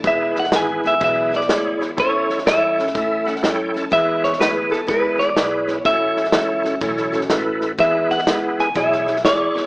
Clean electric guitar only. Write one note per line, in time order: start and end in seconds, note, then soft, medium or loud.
0.07 0.38 E5 medium
0.40 0.55 F#5 medium
0.56 0.84 G#5 loud
0.87 1.02 E5 medium
1.04 1.35 E5 medium
1.36 1.80 D5 medium
2.00 2.47 C#5 medium
2.47 3.40 E5 loud
3.93 4.24 E5 medium
4.24 4.41 C#5 medium
4.41 4.71 B4 medium
4.72 4.89 A4 medium
4.89 5.21 B4 medium
5.19 5.66 D5 loud
5.66 5.85 C#5 loud
5.86 6.78 E5 medium
7.80 8.09 E5 medium
8.11 8.60 F#5 loud
8.60 8.76 G#5 loud
8.77 9.25 E5 medium
9.25 9.62 D5 medium
9.62 9.66 C#5 medium